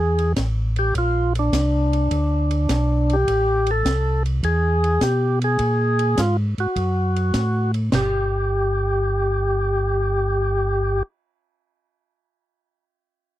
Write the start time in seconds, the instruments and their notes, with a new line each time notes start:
Already playing: tonewheel organ E2 G#4
0.18 ride
0.36 tonewheel organ A1, kick, snare, hi-hat pedal, ride
0.76 tonewheel organ G4, ride
0.94 tonewheel organ A#1 F4, kick, ride
1.35 tonewheel organ D4, ride
1.53 tonewheel organ C2, kick, snare, hi-hat pedal, ride
1.93 ride
2.11 tonewheel organ D2, kick, ride
2.51 ride
2.69 tonewheel organ B1, kick, snare, hi-hat pedal, ride
3.10 tonewheel organ G4, ride
3.27 tonewheel organ A1, kick, ride
3.66 ride
3.71 tonewheel organ A4
3.85 tonewheel organ C2, kick, snare, hi-hat pedal, ride
4.26 ride
4.43 tonewheel organ E2 G#4, kick, ride
4.84 ride
5.01 tonewheel organ B2 G4, kick, snare, hi-hat pedal, ride
5.42 tonewheel organ G#4, ride
5.59 tonewheel organ A#2, kick, ride
5.99 ride
6.17 tonewheel organ G#2 F4, kick, snare, hi-hat pedal, ride
6.58 tonewheel organ G#2 F#4, ride
6.76 tonewheel organ F#2, kick, ride
7.16 ride
7.34 tonewheel organ A2, kick, snare, hi-hat pedal, ride
7.74 ride
7.92 tonewheel organ G1 G4, snare, floor tom, china